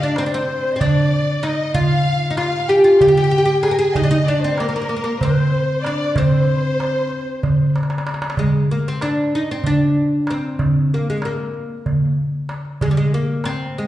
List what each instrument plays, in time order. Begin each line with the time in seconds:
Already playing: ney D#5
0.02 oud D4, violin section D5
0.16 oud C4, ney C5, violin section C5, darbuka tek
0.26 oud D4, ney C5
0.33 oud C4, violin section C5
0.49 darbuka ka
0.73 oud C4, ney D#5
0.78 oud D4, ney D5, violin section D5, darbuka dum
1.43 oud D#4, violin section D#5, darbuka tek
1.59 darbuka ka
1.72 oud F4, ney F5, darbuka dum
1.77 violin section F5
1.90 darbuka ka
2.06 darbuka ka
2.31 oud D#4
2.36 oud F4, ney F5, violin section F5, darbuka tek
2.67 oud G4, ney G5, violin section G5, darbuka ka
2.75 ney G#5
2.84 oud F4, violin section F5, ney G5
3.00 oud G4, ney G5, violin section G5, darbuka dum
3.08 oud G4
3.17 oud G4
3.24 oud G4
3.31 oud G4
3.38 oud G4
3.45 oud G4
3.63 oud G#4, violin section G#5, darbuka tek
3.71 oud A#4
3.78 oud G#4, violin section G#5, darbuka ka
3.94 oud D#4, ney D#5, violin section D#5, darbuka dum
4.04 oud D4
4.11 oud D#4, darbuka ka
4.25 oud D4, violin section D5, ney D5, darbuka ka
4.40 violin section C5
4.44 oud C4
4.57 oud A#3, violin section A#4, ney A#4, darbuka tek
4.69 oud A#3
4.76 oud A#3
4.82 oud A#3
4.89 oud A#3
4.97 oud A#3
5.04 oud A#3, ney A#4
5.21 oud C4, violin section C5, ney C5, darbuka dum
5.84 oud D4, violin section D5, ney D5, darbuka tek
6.00 darbuka ka
6.15 oud C4, violin section C5, ney C5, darbuka dum
6.32 darbuka ka
6.48 darbuka ka
6.80 darbuka tek
7.12 darbuka ka
7.43 darbuka dum
7.76 darbuka tek
7.83 darbuka ka
7.90 darbuka tek
7.98 darbuka ka
8.07 darbuka tek
8.14 darbuka ka
8.22 darbuka tek
8.30 darbuka ka
8.37 oud G#3, darbuka dum
8.71 oud A#3
8.88 oud C4
9.01 oud D4, darbuka tek
9.33 oud D#4, darbuka ka
9.51 oud C4
9.64 oud D4, darbuka dum
10.27 oud C4, darbuka tek
10.43 darbuka ka
10.59 darbuka dum
10.94 oud A#3
11.10 oud G#3
11.22 oud A#3, darbuka tek
11.54 darbuka ka
11.86 darbuka dum
12.49 darbuka tek
12.65 darbuka ka
12.81 oud G#3, darbuka dum
12.91 oud G3
12.97 oud G#3
13.14 oud A#3
13.44 oud C4, darbuka tek
13.76 oud G#3, darbuka ka